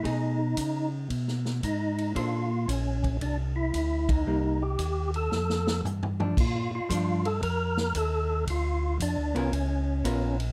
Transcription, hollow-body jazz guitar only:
0.03 A3 D#4 G#4
2.15 A#3 D4 A4 C5
4.27 G3 A#3 D#4
6.20 F3 A3 D4
6.89 F3 A3 D4
9.35 B3 F4 A#4
10.05 B3 F4 A#4

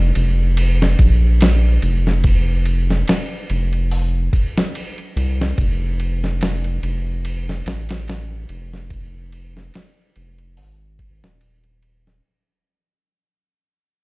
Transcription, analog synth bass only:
Already playing: F1
0.16 F1
0.99 A#1
1.83 F1
3.50 F1
5.16 C2
5.58 F1
6.83 F1
7.66 A1
8.49 F1
10.16 F1
10.58 G#1
11.23 D#1

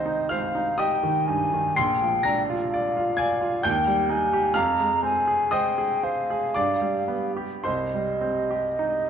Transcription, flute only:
Already playing: D#5
0.30 F5
0.79 G5
1.27 G#5
1.76 G5
2.72 F5
3.63 G5
4.11 G#5
4.56 A#5
5.04 G#5
5.53 G5
6.04 F5
7.64 D#5

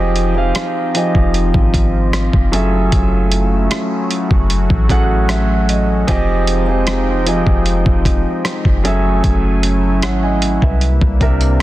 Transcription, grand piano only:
Already playing: F3 C4 G4 G#4 D#5
0.35 F3 C4 G4 G#4 F5
0.94 F3 C4 G4 G#4 D#5
2.52 F#3 C#4 G#4 A4 E5
4.89 F#3 C#4 G#4 A4 F#5 G#5
5.04 F#5
5.30 E5
5.69 D#5
6.07 F3 C4 G4 G#4 D#5
6.67 F3 C4 G4 G#4 C5
7.26 F3 C4 G4 G#4 D#5
8.84 F#3 C#4 G#4 A4 E5
10.03 C#5 F#5
10.23 D#5 G#5
10.62 B4 E5
11.20 C3 C4 D4 A#4 E5

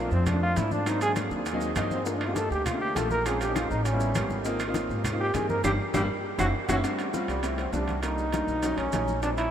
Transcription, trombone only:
0.00 A#3
0.13 C4
0.28 D4
0.43 F4
0.58 E4
0.72 D4
0.88 D#4
1.02 G#4
1.92 C4
2.07 A#3
2.17 D4
2.27 F4
2.36 A4
2.52 G4
2.66 F4
2.81 G4
2.97 A4
3.11 A#4
3.27 G#4
3.42 G4
3.57 F4
3.71 D#4
3.86 C#4
5.20 G4
5.35 G#4
5.50 A#4
5.65 G4
5.94 G4
6.40 F#4
6.69 F#4
7.29 G3
7.59 C4
7.73 D4
8.03 D#4
8.77 C#4
9.23 D4
9.37 E4

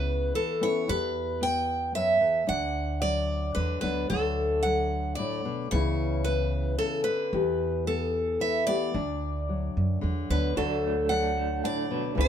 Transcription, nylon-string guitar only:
Already playing: C#3 A3 B3 E4
0.35 E3
0.61 B3 C#4 E4
0.87 E2 G4
1.41 B3
1.95 F#2
2.20 E2
2.47 D2 D4
3.02 F#3
3.56 D3
3.82 F#3 B3 D4
4.09 D2 D3 F#3 A3 F#4
4.64 F#3
5.18 A2
5.45 B2
5.71 C#3 E3 B3 C#4 E4
6.26 B3
6.79 C#3
7.06 D3
7.33 E2 G4
7.87 B3
8.40 E3
8.68 B3 G4
8.94 D2 D4
9.49 F#3
10.01 D3
10.31 F#3 B3 D4
10.56 D2 F#4
11.11 F#3
11.64 A2
11.91 B2
12.15 C#3 E3 B3 C#4 E4

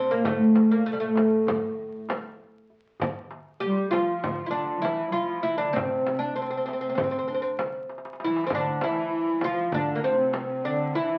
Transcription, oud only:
Already playing: C4
0.11 A#3
0.25 A3
0.71 A#3
0.86 A3
0.93 G3
1.00 A3
3.60 G4
3.91 F4
4.46 E4
4.51 D4
4.82 E4
5.12 F4
5.43 E4
5.58 D4
5.73 C4
6.19 D4
6.36 C4
6.42 C4
6.51 C4
6.57 C4
6.66 C4
6.73 C4
6.81 C4
6.89 C4
6.95 C4
7.04 C4
7.11 C4
7.19 C4
7.28 C4
7.34 C4
7.42 C4
8.24 E4
8.47 C4
8.55 D4
8.84 E4
9.44 F4
9.74 D4
9.95 A#3
10.04 C4
10.65 D4
10.95 E4

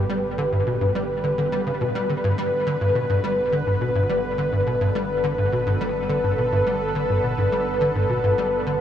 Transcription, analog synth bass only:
0.09 G3
0.38 D3
0.52 G2
0.67 B2
0.81 G2
0.95 G3
1.24 D3
1.38 D3
1.52 G3
1.67 C#3
1.81 B2
1.95 G3
2.09 D3
2.24 G2
2.38 G3
2.67 D3
2.81 G2
2.95 B2
3.09 G2
3.24 G3
3.52 D3
3.67 G2
3.81 B2
3.95 G2
4.09 G3
4.38 D3
4.52 G2
4.67 B2
4.81 G2
4.95 G3
5.24 D3
5.38 G2
5.52 B2
5.66 G2
5.81 G3
6.09 D3
6.24 G2
6.38 B2
6.52 G2
6.67 G3
6.95 D3
7.09 G2
7.24 B2
7.38 G2
7.52 G3
7.81 D3
7.95 G2
8.09 B2
8.24 G2
8.38 G3
8.66 D3

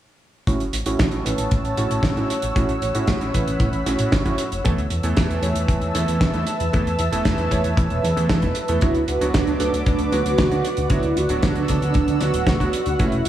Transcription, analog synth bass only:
0.47 A1
0.60 F#1
0.73 A1
0.86 A1
1.00 A1
1.12 A1
1.25 A1
1.38 A1
1.52 A1
1.64 A1
1.78 A1
1.90 A1
2.03 A1
2.17 A1
2.43 A1
2.56 A1
2.69 A1
2.82 A1
2.95 A2
3.08 A1
3.21 A1
3.35 A1
3.47 A1
3.60 A2
3.73 A1
3.86 A1
3.99 A2
4.12 F#1
4.26 F#1
4.52 F#1
4.66 E2
4.78 D2
4.91 E2
5.04 E2
5.17 E2
5.30 E2
5.43 E2
5.56 E2
5.68 E2
5.82 E2
5.95 E2
6.08 E2
6.21 E2
6.34 E2
6.60 E2
6.74 E2
6.86 E2
6.99 E2
7.12 E1
7.25 E2
7.38 E2
7.51 E2
7.64 E2
7.77 E2
7.90 E1
8.03 E2
8.17 E2
8.29 E2
8.43 E1
8.69 E2
8.82 D2
8.95 D2
9.08 D2
9.21 D2
9.35 D2
9.47 D2
9.60 D2
9.73 D2
9.87 D2
9.99 D2
10.12 D2
10.25 D2
10.39 D2
10.51 D2
10.78 D2
10.90 D2
11.04 D2
11.17 D2
11.30 D1
11.43 D2
11.56 D2
11.70 D2
11.82 D2
11.95 D1
12.08 D2
12.21 D2
12.34 D1
12.47 D2
12.60 D2
12.86 D2
13.00 F#1
13.12 E1
13.25 F#1

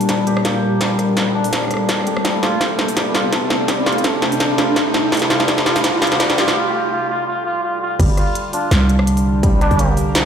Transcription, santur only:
Already playing: A#3 D4 G4
0.09 G3
0.27 G4
0.45 A#3
0.81 G3
1.35 D4
2.07 G4
2.25 G3
2.43 G4
2.61 A3
2.97 G3
3.15 G4
3.33 A3
3.69 G3
3.86 G4
4.04 A3
4.40 G3
4.58 G4
4.76 A3
5.12 G3
5.30 G4
5.48 G3
5.66 G4
5.84 G3
6.02 G4
6.20 G3
6.38 G4
7.99 G3
8.53 D4
9.43 G3
9.61 G4
9.79 A#3
10.15 G3

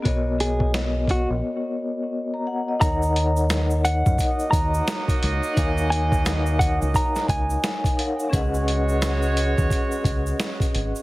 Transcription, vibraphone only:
0.03 B3 F#4 A#4 C#5
0.07 D#5
2.34 A#5
2.47 F#5
2.68 D#5
2.79 D#4 A#4 C#5 D#5
2.84 F#5
5.54 D#4 A#4 C#5 F5
5.58 G#5
7.97 D#4 A#4 C#5 F5 F#5
8.30 C#4 G#4 B4 D#5
8.34 F#5

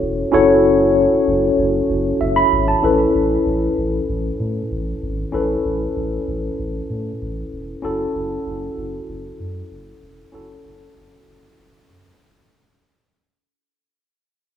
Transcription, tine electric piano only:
Already playing: C#4 E4 F#4 A4 C#5
0.32 C#4 E4 F#4 A4 C#5
2.21 E5
2.36 B5
2.68 A5
2.82 C#4 E4 A4 B4
5.32 C#4 E4 A4 B4
7.82 C#4 E4 F#4 A4
10.32 C#4 E4 F#4 A4

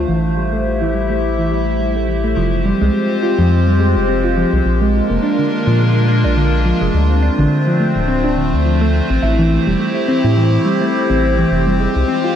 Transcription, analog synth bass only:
0.08 A1
2.37 F1
2.81 C2
3.39 F2
3.96 F1
4.53 C2
4.65 A#1
5.10 F1
5.67 A#2
6.24 A#1
6.81 F1
6.94 D2
7.39 A1
7.96 D1
8.53 D2
9.10 A1
9.23 A1
9.67 E1
10.24 A2
11.10 A1
11.51 F1
11.96 C2

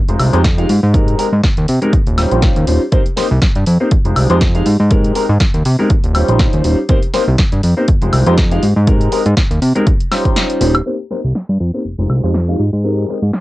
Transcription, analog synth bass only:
0.09 F1
0.20 C2
0.34 F2
0.69 G#2
0.83 G#2
1.33 G#2
1.58 D#2
1.69 C3
2.07 D#1
2.32 A#1
2.56 D#2
2.68 D#1
3.31 C2
3.56 G2
3.67 F2
3.92 F1
4.05 F1
4.16 C2
4.30 F2
4.66 G#2
4.80 G#2
5.29 G#2
5.54 D#2
5.65 C3
6.04 D#1
6.29 A#1
6.53 D#2
6.64 D#1
7.28 C2
7.52 G2
7.64 F2
7.88 F1
8.02 F1
8.13 C2
8.27 F2
8.63 G#2
8.76 G#2
9.26 G#2
9.51 D#2
9.62 C3
10.61 D#1
11.24 C2
11.49 G2
11.60 F2
11.85 F1
11.99 F1
12.10 C2
12.23 F2
12.59 G#2
12.73 G#2
13.22 G#2

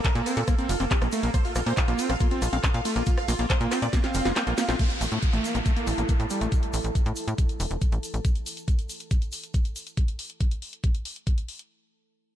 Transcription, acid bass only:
0.15 A#3
0.26 C4
0.37 C4
0.48 A#3
0.59 C4
0.80 C4
0.91 C4
1.12 A3
1.23 A#3
1.34 A#3
1.56 A#3
1.66 A#3
1.88 A#3
1.99 C4
2.10 C4
2.20 A#3
2.31 C4
2.53 C4
2.64 C4
2.85 A3
2.96 A#3
3.07 A#3
3.28 A#3
3.39 A#3
3.61 A#3
3.71 C4
3.82 C4
3.93 A#3
4.04 C4
4.25 A#3
4.36 A#3
4.47 A#3
4.58 A#3
4.69 C4
4.79 A3
5.01 A3
5.12 A3
5.33 A3
5.44 A#3
5.55 A#3
5.66 A3
5.77 A#3
5.98 A#3
6.09 A#3
6.30 G3
6.41 A3

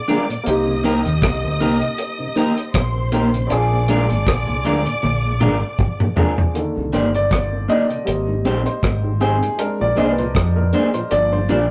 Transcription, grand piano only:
Already playing: C4 D4 F4 G#4
0.44 A#3 C4 D#4
0.49 G4
3.47 C4 D4 F4
3.53 G#4
6.16 C4 D4 F4 G#4
6.54 D3 D#3 A#3
6.94 C5
7.15 D5
7.70 D#5
8.05 G3 A#3 C4
8.66 C5
9.21 G#4
9.58 G#3 C4 D4 A#4
9.81 D5
9.98 D#5
10.11 B4
10.19 C5
10.56 A#4
10.94 C5
11.10 F3 A#3 D4 D5
11.33 C5

